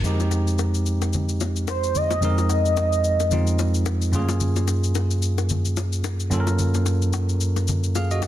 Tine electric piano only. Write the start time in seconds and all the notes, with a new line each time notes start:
0.03 F2 G#3 C4 D#4 G4
2.21 F2 G#3 C4 D#4 A#4
3.31 F2 G#3 C4 D#4 F4
4.12 F#2 A3 C#4 F4 G#4
4.19 A#3
6.30 F#2 A#3 C#4 F4 A4
6.40 A#4
7.96 G#4 F5
8.11 F#4 D#5